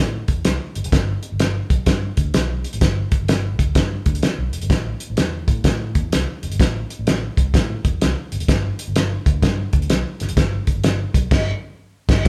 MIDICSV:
0, 0, Header, 1, 3, 480
1, 0, Start_track
1, 0, Key_signature, 0, "minor"
1, 0, Tempo, 471698
1, 942, Time_signature, 4, 2, 24, 8
1, 12498, End_track
2, 0, Start_track
2, 0, Title_t, "Fingered electric bass"
2, 0, Program_c, 0, 33
2, 0, Note_on_c, 0, 45, 99
2, 206, Note_off_c, 0, 45, 0
2, 290, Note_on_c, 0, 40, 81
2, 416, Note_off_c, 0, 40, 0
2, 461, Note_on_c, 0, 36, 84
2, 576, Note_off_c, 0, 36, 0
2, 774, Note_on_c, 0, 31, 103
2, 836, Note_off_c, 0, 31, 0
2, 862, Note_on_c, 0, 29, 93
2, 923, Note_off_c, 0, 29, 0
2, 943, Note_on_c, 0, 31, 101
2, 1172, Note_off_c, 0, 31, 0
2, 1345, Note_on_c, 0, 31, 95
2, 1634, Note_off_c, 0, 31, 0
2, 1732, Note_on_c, 0, 35, 81
2, 1859, Note_off_c, 0, 35, 0
2, 1902, Note_on_c, 0, 43, 96
2, 2132, Note_off_c, 0, 43, 0
2, 2215, Note_on_c, 0, 38, 87
2, 2340, Note_off_c, 0, 38, 0
2, 2391, Note_on_c, 0, 35, 96
2, 2681, Note_off_c, 0, 35, 0
2, 2786, Note_on_c, 0, 33, 78
2, 2847, Note_off_c, 0, 33, 0
2, 2864, Note_on_c, 0, 31, 101
2, 3094, Note_off_c, 0, 31, 0
2, 3267, Note_on_c, 0, 31, 82
2, 3657, Note_off_c, 0, 31, 0
2, 3657, Note_on_c, 0, 38, 86
2, 3783, Note_off_c, 0, 38, 0
2, 3820, Note_on_c, 0, 43, 88
2, 4052, Note_off_c, 0, 43, 0
2, 4133, Note_on_c, 0, 38, 92
2, 4261, Note_off_c, 0, 38, 0
2, 4460, Note_on_c, 0, 35, 90
2, 4576, Note_off_c, 0, 35, 0
2, 4617, Note_on_c, 0, 29, 78
2, 4681, Note_off_c, 0, 29, 0
2, 4708, Note_on_c, 0, 31, 85
2, 4770, Note_off_c, 0, 31, 0
2, 4784, Note_on_c, 0, 33, 105
2, 5015, Note_off_c, 0, 33, 0
2, 5189, Note_on_c, 0, 33, 88
2, 5251, Note_off_c, 0, 33, 0
2, 5271, Note_on_c, 0, 40, 88
2, 5500, Note_off_c, 0, 40, 0
2, 5577, Note_on_c, 0, 45, 87
2, 5704, Note_off_c, 0, 45, 0
2, 5740, Note_on_c, 0, 45, 93
2, 6058, Note_on_c, 0, 40, 96
2, 6073, Note_off_c, 0, 45, 0
2, 6185, Note_off_c, 0, 40, 0
2, 6241, Note_on_c, 0, 36, 88
2, 6352, Note_off_c, 0, 36, 0
2, 6544, Note_on_c, 0, 29, 88
2, 6606, Note_off_c, 0, 29, 0
2, 6630, Note_on_c, 0, 31, 84
2, 6692, Note_off_c, 0, 31, 0
2, 6711, Note_on_c, 0, 33, 97
2, 6941, Note_off_c, 0, 33, 0
2, 7115, Note_on_c, 0, 33, 85
2, 7404, Note_off_c, 0, 33, 0
2, 7506, Note_on_c, 0, 36, 93
2, 7631, Note_off_c, 0, 36, 0
2, 7674, Note_on_c, 0, 45, 99
2, 7903, Note_off_c, 0, 45, 0
2, 7985, Note_on_c, 0, 40, 86
2, 8110, Note_off_c, 0, 40, 0
2, 8164, Note_on_c, 0, 36, 86
2, 8275, Note_off_c, 0, 36, 0
2, 8469, Note_on_c, 0, 31, 99
2, 8530, Note_off_c, 0, 31, 0
2, 8555, Note_on_c, 0, 29, 91
2, 8615, Note_off_c, 0, 29, 0
2, 8633, Note_on_c, 0, 31, 100
2, 8862, Note_off_c, 0, 31, 0
2, 9032, Note_on_c, 0, 31, 92
2, 9322, Note_off_c, 0, 31, 0
2, 9427, Note_on_c, 0, 38, 83
2, 9551, Note_off_c, 0, 38, 0
2, 9591, Note_on_c, 0, 43, 98
2, 9821, Note_off_c, 0, 43, 0
2, 9907, Note_on_c, 0, 38, 93
2, 10031, Note_off_c, 0, 38, 0
2, 10079, Note_on_c, 0, 35, 97
2, 10191, Note_off_c, 0, 35, 0
2, 10390, Note_on_c, 0, 31, 102
2, 10450, Note_off_c, 0, 31, 0
2, 10471, Note_on_c, 0, 29, 91
2, 10532, Note_off_c, 0, 29, 0
2, 10552, Note_on_c, 0, 31, 105
2, 10780, Note_off_c, 0, 31, 0
2, 10947, Note_on_c, 0, 31, 89
2, 11237, Note_off_c, 0, 31, 0
2, 11339, Note_on_c, 0, 35, 84
2, 11465, Note_off_c, 0, 35, 0
2, 11512, Note_on_c, 0, 31, 103
2, 11721, Note_off_c, 0, 31, 0
2, 12300, Note_on_c, 0, 31, 117
2, 12414, Note_off_c, 0, 31, 0
2, 12498, End_track
3, 0, Start_track
3, 0, Title_t, "Drums"
3, 285, Note_on_c, 9, 42, 62
3, 289, Note_on_c, 9, 36, 78
3, 387, Note_off_c, 9, 42, 0
3, 391, Note_off_c, 9, 36, 0
3, 454, Note_on_c, 9, 42, 93
3, 459, Note_on_c, 9, 38, 110
3, 556, Note_off_c, 9, 42, 0
3, 561, Note_off_c, 9, 38, 0
3, 768, Note_on_c, 9, 42, 55
3, 858, Note_off_c, 9, 42, 0
3, 858, Note_on_c, 9, 42, 56
3, 940, Note_off_c, 9, 42, 0
3, 940, Note_on_c, 9, 36, 103
3, 940, Note_on_c, 9, 42, 97
3, 947, Note_on_c, 9, 38, 110
3, 1042, Note_off_c, 9, 36, 0
3, 1042, Note_off_c, 9, 42, 0
3, 1049, Note_off_c, 9, 38, 0
3, 1248, Note_on_c, 9, 42, 59
3, 1350, Note_off_c, 9, 42, 0
3, 1420, Note_on_c, 9, 42, 99
3, 1428, Note_on_c, 9, 38, 113
3, 1522, Note_off_c, 9, 42, 0
3, 1530, Note_off_c, 9, 38, 0
3, 1732, Note_on_c, 9, 36, 93
3, 1735, Note_on_c, 9, 42, 80
3, 1834, Note_off_c, 9, 36, 0
3, 1837, Note_off_c, 9, 42, 0
3, 1896, Note_on_c, 9, 42, 92
3, 1899, Note_on_c, 9, 36, 91
3, 1905, Note_on_c, 9, 38, 108
3, 1998, Note_off_c, 9, 42, 0
3, 2001, Note_off_c, 9, 36, 0
3, 2006, Note_off_c, 9, 38, 0
3, 2209, Note_on_c, 9, 42, 65
3, 2213, Note_on_c, 9, 36, 83
3, 2311, Note_off_c, 9, 42, 0
3, 2315, Note_off_c, 9, 36, 0
3, 2380, Note_on_c, 9, 42, 98
3, 2386, Note_on_c, 9, 38, 111
3, 2482, Note_off_c, 9, 42, 0
3, 2488, Note_off_c, 9, 38, 0
3, 2691, Note_on_c, 9, 42, 56
3, 2777, Note_off_c, 9, 42, 0
3, 2777, Note_on_c, 9, 42, 55
3, 2862, Note_off_c, 9, 42, 0
3, 2862, Note_on_c, 9, 42, 102
3, 2863, Note_on_c, 9, 36, 101
3, 2869, Note_on_c, 9, 38, 109
3, 2964, Note_off_c, 9, 36, 0
3, 2964, Note_off_c, 9, 42, 0
3, 2970, Note_off_c, 9, 38, 0
3, 3171, Note_on_c, 9, 42, 64
3, 3174, Note_on_c, 9, 36, 90
3, 3273, Note_off_c, 9, 42, 0
3, 3275, Note_off_c, 9, 36, 0
3, 3342, Note_on_c, 9, 42, 94
3, 3350, Note_on_c, 9, 38, 111
3, 3444, Note_off_c, 9, 42, 0
3, 3452, Note_off_c, 9, 38, 0
3, 3654, Note_on_c, 9, 36, 95
3, 3659, Note_on_c, 9, 42, 79
3, 3756, Note_off_c, 9, 36, 0
3, 3760, Note_off_c, 9, 42, 0
3, 3817, Note_on_c, 9, 42, 89
3, 3819, Note_on_c, 9, 36, 94
3, 3826, Note_on_c, 9, 38, 109
3, 3919, Note_off_c, 9, 42, 0
3, 3921, Note_off_c, 9, 36, 0
3, 3928, Note_off_c, 9, 38, 0
3, 4129, Note_on_c, 9, 42, 62
3, 4133, Note_on_c, 9, 36, 86
3, 4223, Note_off_c, 9, 42, 0
3, 4223, Note_on_c, 9, 42, 56
3, 4235, Note_off_c, 9, 36, 0
3, 4300, Note_off_c, 9, 42, 0
3, 4300, Note_on_c, 9, 42, 87
3, 4306, Note_on_c, 9, 38, 103
3, 4402, Note_off_c, 9, 42, 0
3, 4408, Note_off_c, 9, 38, 0
3, 4610, Note_on_c, 9, 42, 58
3, 4697, Note_off_c, 9, 42, 0
3, 4697, Note_on_c, 9, 42, 53
3, 4782, Note_on_c, 9, 36, 102
3, 4783, Note_off_c, 9, 42, 0
3, 4783, Note_on_c, 9, 42, 91
3, 4790, Note_on_c, 9, 38, 115
3, 4883, Note_off_c, 9, 36, 0
3, 4885, Note_off_c, 9, 42, 0
3, 4892, Note_off_c, 9, 38, 0
3, 5090, Note_on_c, 9, 42, 62
3, 5192, Note_off_c, 9, 42, 0
3, 5261, Note_on_c, 9, 42, 91
3, 5269, Note_on_c, 9, 38, 109
3, 5363, Note_off_c, 9, 42, 0
3, 5371, Note_off_c, 9, 38, 0
3, 5574, Note_on_c, 9, 36, 91
3, 5575, Note_on_c, 9, 42, 80
3, 5676, Note_off_c, 9, 36, 0
3, 5677, Note_off_c, 9, 42, 0
3, 5740, Note_on_c, 9, 42, 96
3, 5742, Note_on_c, 9, 36, 89
3, 5749, Note_on_c, 9, 38, 116
3, 5842, Note_off_c, 9, 42, 0
3, 5844, Note_off_c, 9, 36, 0
3, 5851, Note_off_c, 9, 38, 0
3, 6056, Note_on_c, 9, 42, 62
3, 6058, Note_on_c, 9, 36, 81
3, 6158, Note_off_c, 9, 42, 0
3, 6159, Note_off_c, 9, 36, 0
3, 6232, Note_on_c, 9, 42, 103
3, 6237, Note_on_c, 9, 38, 105
3, 6334, Note_off_c, 9, 42, 0
3, 6339, Note_off_c, 9, 38, 0
3, 6543, Note_on_c, 9, 42, 56
3, 6630, Note_off_c, 9, 42, 0
3, 6630, Note_on_c, 9, 42, 57
3, 6711, Note_on_c, 9, 36, 105
3, 6716, Note_off_c, 9, 42, 0
3, 6716, Note_on_c, 9, 42, 97
3, 6723, Note_on_c, 9, 38, 113
3, 6813, Note_off_c, 9, 36, 0
3, 6818, Note_off_c, 9, 42, 0
3, 6825, Note_off_c, 9, 38, 0
3, 7026, Note_on_c, 9, 42, 61
3, 7127, Note_off_c, 9, 42, 0
3, 7193, Note_on_c, 9, 42, 84
3, 7201, Note_on_c, 9, 38, 116
3, 7295, Note_off_c, 9, 42, 0
3, 7303, Note_off_c, 9, 38, 0
3, 7504, Note_on_c, 9, 36, 90
3, 7508, Note_on_c, 9, 42, 76
3, 7605, Note_off_c, 9, 36, 0
3, 7610, Note_off_c, 9, 42, 0
3, 7671, Note_on_c, 9, 36, 101
3, 7675, Note_on_c, 9, 42, 88
3, 7684, Note_on_c, 9, 38, 110
3, 7773, Note_off_c, 9, 36, 0
3, 7777, Note_off_c, 9, 42, 0
3, 7786, Note_off_c, 9, 38, 0
3, 7986, Note_on_c, 9, 36, 86
3, 7986, Note_on_c, 9, 42, 61
3, 8087, Note_off_c, 9, 36, 0
3, 8087, Note_off_c, 9, 42, 0
3, 8156, Note_on_c, 9, 42, 89
3, 8161, Note_on_c, 9, 38, 103
3, 8258, Note_off_c, 9, 42, 0
3, 8263, Note_off_c, 9, 38, 0
3, 8466, Note_on_c, 9, 42, 51
3, 8552, Note_off_c, 9, 42, 0
3, 8552, Note_on_c, 9, 42, 57
3, 8634, Note_off_c, 9, 42, 0
3, 8634, Note_on_c, 9, 36, 100
3, 8634, Note_on_c, 9, 42, 99
3, 8641, Note_on_c, 9, 38, 108
3, 8736, Note_off_c, 9, 36, 0
3, 8736, Note_off_c, 9, 42, 0
3, 8743, Note_off_c, 9, 38, 0
3, 8945, Note_on_c, 9, 42, 68
3, 9047, Note_off_c, 9, 42, 0
3, 9114, Note_on_c, 9, 42, 93
3, 9122, Note_on_c, 9, 38, 122
3, 9215, Note_off_c, 9, 42, 0
3, 9223, Note_off_c, 9, 38, 0
3, 9425, Note_on_c, 9, 36, 100
3, 9428, Note_on_c, 9, 42, 80
3, 9526, Note_off_c, 9, 36, 0
3, 9529, Note_off_c, 9, 42, 0
3, 9591, Note_on_c, 9, 36, 90
3, 9591, Note_on_c, 9, 42, 91
3, 9600, Note_on_c, 9, 38, 114
3, 9693, Note_off_c, 9, 36, 0
3, 9693, Note_off_c, 9, 42, 0
3, 9702, Note_off_c, 9, 38, 0
3, 9899, Note_on_c, 9, 42, 63
3, 9904, Note_on_c, 9, 36, 88
3, 9994, Note_off_c, 9, 42, 0
3, 9994, Note_on_c, 9, 42, 49
3, 10006, Note_off_c, 9, 36, 0
3, 10071, Note_off_c, 9, 42, 0
3, 10071, Note_on_c, 9, 42, 104
3, 10076, Note_on_c, 9, 38, 106
3, 10172, Note_off_c, 9, 42, 0
3, 10178, Note_off_c, 9, 38, 0
3, 10381, Note_on_c, 9, 42, 56
3, 10394, Note_on_c, 9, 38, 34
3, 10468, Note_off_c, 9, 42, 0
3, 10468, Note_on_c, 9, 42, 62
3, 10496, Note_off_c, 9, 38, 0
3, 10551, Note_on_c, 9, 36, 104
3, 10552, Note_off_c, 9, 42, 0
3, 10552, Note_on_c, 9, 42, 87
3, 10559, Note_on_c, 9, 38, 120
3, 10653, Note_off_c, 9, 36, 0
3, 10654, Note_off_c, 9, 42, 0
3, 10661, Note_off_c, 9, 38, 0
3, 10859, Note_on_c, 9, 42, 61
3, 10862, Note_on_c, 9, 36, 83
3, 10961, Note_off_c, 9, 42, 0
3, 10964, Note_off_c, 9, 36, 0
3, 11027, Note_on_c, 9, 42, 93
3, 11035, Note_on_c, 9, 38, 113
3, 11128, Note_off_c, 9, 42, 0
3, 11137, Note_off_c, 9, 38, 0
3, 11340, Note_on_c, 9, 36, 98
3, 11344, Note_on_c, 9, 42, 87
3, 11442, Note_off_c, 9, 36, 0
3, 11446, Note_off_c, 9, 42, 0
3, 11511, Note_on_c, 9, 36, 110
3, 11512, Note_on_c, 9, 49, 87
3, 11520, Note_on_c, 9, 38, 113
3, 11613, Note_off_c, 9, 36, 0
3, 11613, Note_off_c, 9, 49, 0
3, 11622, Note_off_c, 9, 38, 0
3, 12300, Note_on_c, 9, 36, 103
3, 12302, Note_on_c, 9, 49, 83
3, 12310, Note_on_c, 9, 38, 107
3, 12402, Note_off_c, 9, 36, 0
3, 12404, Note_off_c, 9, 49, 0
3, 12412, Note_off_c, 9, 38, 0
3, 12498, End_track
0, 0, End_of_file